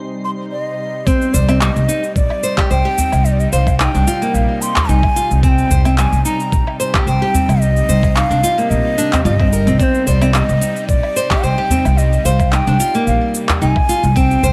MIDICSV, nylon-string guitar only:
0, 0, Header, 1, 2, 480
1, 0, Start_track
1, 0, Key_signature, -3, "minor"
1, 0, Tempo, 545455
1, 942, Time_signature, 4, 2, 24, 8
1, 12783, End_track
2, 0, Start_track
2, 0, Title_t, "Nylon-string guitar"
2, 0, Program_c, 0, 24
2, 939, Note_on_c, 0, 60, 104
2, 1169, Note_off_c, 0, 60, 0
2, 1179, Note_on_c, 0, 72, 74
2, 1296, Note_off_c, 0, 72, 0
2, 1307, Note_on_c, 0, 60, 93
2, 1409, Note_off_c, 0, 60, 0
2, 1421, Note_on_c, 0, 55, 98
2, 1494, Note_off_c, 0, 55, 0
2, 1659, Note_on_c, 0, 63, 78
2, 1782, Note_off_c, 0, 63, 0
2, 2141, Note_on_c, 0, 72, 80
2, 2257, Note_off_c, 0, 72, 0
2, 2267, Note_on_c, 0, 67, 109
2, 2375, Note_off_c, 0, 67, 0
2, 2381, Note_on_c, 0, 72, 81
2, 2503, Note_off_c, 0, 72, 0
2, 2509, Note_on_c, 0, 67, 92
2, 2615, Note_off_c, 0, 67, 0
2, 2623, Note_on_c, 0, 60, 74
2, 2744, Note_off_c, 0, 60, 0
2, 3103, Note_on_c, 0, 72, 77
2, 3331, Note_off_c, 0, 72, 0
2, 3346, Note_on_c, 0, 63, 80
2, 3466, Note_off_c, 0, 63, 0
2, 3474, Note_on_c, 0, 62, 74
2, 3572, Note_off_c, 0, 62, 0
2, 3584, Note_on_c, 0, 65, 103
2, 3705, Note_off_c, 0, 65, 0
2, 3714, Note_on_c, 0, 58, 80
2, 4179, Note_off_c, 0, 58, 0
2, 4303, Note_on_c, 0, 63, 78
2, 4424, Note_off_c, 0, 63, 0
2, 4543, Note_on_c, 0, 65, 102
2, 4664, Note_off_c, 0, 65, 0
2, 4780, Note_on_c, 0, 60, 99
2, 5010, Note_off_c, 0, 60, 0
2, 5023, Note_on_c, 0, 72, 80
2, 5138, Note_off_c, 0, 72, 0
2, 5151, Note_on_c, 0, 60, 100
2, 5251, Note_off_c, 0, 60, 0
2, 5264, Note_on_c, 0, 55, 95
2, 5336, Note_off_c, 0, 55, 0
2, 5502, Note_on_c, 0, 63, 80
2, 5624, Note_off_c, 0, 63, 0
2, 5981, Note_on_c, 0, 72, 75
2, 6097, Note_off_c, 0, 72, 0
2, 6109, Note_on_c, 0, 67, 105
2, 6216, Note_off_c, 0, 67, 0
2, 6224, Note_on_c, 0, 72, 79
2, 6344, Note_off_c, 0, 72, 0
2, 6353, Note_on_c, 0, 67, 92
2, 6457, Note_off_c, 0, 67, 0
2, 6463, Note_on_c, 0, 60, 78
2, 6584, Note_off_c, 0, 60, 0
2, 6942, Note_on_c, 0, 72, 77
2, 7170, Note_off_c, 0, 72, 0
2, 7181, Note_on_c, 0, 63, 78
2, 7303, Note_off_c, 0, 63, 0
2, 7311, Note_on_c, 0, 62, 74
2, 7411, Note_off_c, 0, 62, 0
2, 7422, Note_on_c, 0, 65, 95
2, 7544, Note_off_c, 0, 65, 0
2, 7550, Note_on_c, 0, 58, 76
2, 7902, Note_on_c, 0, 62, 97
2, 8017, Note_off_c, 0, 58, 0
2, 8017, Note_off_c, 0, 62, 0
2, 8030, Note_on_c, 0, 60, 77
2, 8094, Note_off_c, 0, 60, 0
2, 8140, Note_on_c, 0, 65, 82
2, 8214, Note_off_c, 0, 65, 0
2, 8271, Note_on_c, 0, 60, 71
2, 8334, Note_off_c, 0, 60, 0
2, 8383, Note_on_c, 0, 70, 72
2, 8504, Note_off_c, 0, 70, 0
2, 8509, Note_on_c, 0, 60, 101
2, 8608, Note_off_c, 0, 60, 0
2, 8619, Note_on_c, 0, 60, 104
2, 8849, Note_off_c, 0, 60, 0
2, 8861, Note_on_c, 0, 72, 78
2, 8977, Note_off_c, 0, 72, 0
2, 8988, Note_on_c, 0, 60, 98
2, 9090, Note_off_c, 0, 60, 0
2, 9100, Note_on_c, 0, 55, 99
2, 9174, Note_off_c, 0, 55, 0
2, 9340, Note_on_c, 0, 63, 78
2, 9463, Note_off_c, 0, 63, 0
2, 9824, Note_on_c, 0, 72, 78
2, 9938, Note_off_c, 0, 72, 0
2, 9950, Note_on_c, 0, 67, 104
2, 10056, Note_off_c, 0, 67, 0
2, 10062, Note_on_c, 0, 72, 77
2, 10184, Note_off_c, 0, 72, 0
2, 10190, Note_on_c, 0, 67, 95
2, 10296, Note_off_c, 0, 67, 0
2, 10303, Note_on_c, 0, 60, 78
2, 10424, Note_off_c, 0, 60, 0
2, 10783, Note_on_c, 0, 72, 78
2, 11011, Note_off_c, 0, 72, 0
2, 11022, Note_on_c, 0, 63, 80
2, 11144, Note_off_c, 0, 63, 0
2, 11152, Note_on_c, 0, 62, 78
2, 11251, Note_off_c, 0, 62, 0
2, 11263, Note_on_c, 0, 65, 106
2, 11384, Note_off_c, 0, 65, 0
2, 11394, Note_on_c, 0, 58, 78
2, 11859, Note_off_c, 0, 58, 0
2, 11982, Note_on_c, 0, 63, 84
2, 12104, Note_off_c, 0, 63, 0
2, 12223, Note_on_c, 0, 65, 99
2, 12344, Note_off_c, 0, 65, 0
2, 12462, Note_on_c, 0, 60, 108
2, 12691, Note_off_c, 0, 60, 0
2, 12703, Note_on_c, 0, 72, 77
2, 12783, Note_off_c, 0, 72, 0
2, 12783, End_track
0, 0, End_of_file